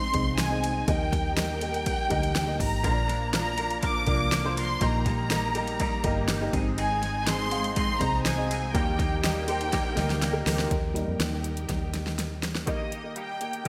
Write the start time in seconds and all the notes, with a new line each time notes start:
Already playing: G#2 G#3 C4 D#4 G#4 C5 D#5 F5 C6
0.13 C2 C4 D#4 G#4 D#5, kick, ride
0.38 G#5, snare, ride
0.49 C4 D#4 G#4 D#5
0.64 ride
0.87 D#2 D#3 G3 A#3 D#4 G4 A#4 D#5 G5, kick, ride
1.13 kick, snare, ride
1.35 A#3 D#4 G4 D#5 G5, snare, ride
1.61 A#3 D#4 G4 D#5, ride
1.74 ride
1.86 kick, ride
2.09 D2 A#3 D#4 G4 D#5, kick, ride
2.23 ride
2.35 snare, ride
2.46 A#3 D#4 G4 D#5
2.60 G#1 A#5, kick, open hi-hat, ride
2.83 A#1 A#2 D3 F3 A#3 D4 F4 A#4 C5, kick, ride
2.91 D5
3.08 F3 A#3 D4 A#4, snare, ride
3.33 F3 A#3 D4 F4 A#4 D5 A#5, snare, ride
3.58 F3 A#3 D4 F4 A#4 D5, ride
3.70 ride
3.82 A#2 D3 F3 A#3 D4 A#4 D6, kick, ride
4.06 C2 F3 A#3 D4 F4 A#4 D5, kick, ride
4.32 F3 A#3 D4 A#4, snare, ride
4.44 A#3 D4 F4 C5
4.56 F3 A#3 D4 A#4 C6, ride
4.80 A#1 A#2 D#3 G3 A#3 D#4 G4 D#5 A#5, kick, ride
5.05 G3 A#3 D#4 G4 A#5, kick, snare, ride
5.30 G3 A#3 D#4 G4 D#5, snare, ride
5.55 G3 A#3 D#4 G4 D#5, ride
5.67 ride
5.80 A#2 D#3 G3 A#3 D#4 G4, kick, ride
6.03 G1 G3 A#3 D#4 G4 D#5, kick, ride
6.28 G3 A#3 D#4 G4, snare, ride
6.41 A#3 D#4 G4 D#5
6.53 G#1 G#2 G#3 C4 D#4 G#4 D#5, kick, ride
6.78 G#2 D#3 G#3 C4 D#4 G#4 G#5, ride
7.02 G#3 C4 D#4 G#4, snare, ride
7.26 G#3 C4 D#4 G#4 D#5 C6, snare, ride
7.50 G#3 C4 D#4 G#4 F5, ride
7.64 ride
7.75 G#2 D#3 G#3 C4 D#4 G#4 C6, kick, ride
7.99 C2 G#3 C4 D#4 G#4 C5 A#5, kick, ride
8.24 G#3 C4 D#4 G#4 G#5, snare, ride
8.35 C4 D#4 G#4 D#5
8.50 G#3 C4 D#4 G#4, ride
8.73 D#2 D#3 G3 A#3 D#4 G4 A#4 D#5 G5, kick, ride
8.99 A#3 D#4 G4, kick, snare, ride
9.22 G3 A#3 D#4 G4 D#5 G5, snare, ride
9.47 A#3 D#4 G4 C5, ride
9.61 ride
9.72 D#3 G3 A#3 D#4 G4, kick, snare, ride
9.95 D2 A#3 D#4 G4 D#5, snare, ride
10.10 snare, ride
10.21 G3 A#3 D#4 G4, snare, ride
10.32 A#3 D#4 G4 A#4
10.46 D2 A#3 D#4 G4, snare, open hi-hat, ride
10.59 snare
10.71 D#2 D#4 G4 A#4 G5, kick, closed hi-hat
10.94 G3 A#3 D#4, snare, closed hi-hat
11.08 F2
11.19 D#2, snare, closed hi-hat
11.44 closed hi-hat
11.57 closed hi-hat
11.69 D#2, kick, snare, closed hi-hat
11.94 snare, closed hi-hat
12.07 snare
12.19 snare, closed hi-hat
12.43 snare, closed hi-hat
12.55 snare
12.66 D#3 G3 A#3 D#4 G4 D#5, kick, closed hi-hat
12.91 A#3 D#4 G4, closed hi-hat
13.03 A#3 G4 D#5
13.15 G3 A#3 D#4 G4 G5, closed hi-hat
13.41 A#3 D#4 G4 D#5, closed hi-hat
13.53 closed hi-hat
13.64 D#3 A#3 G4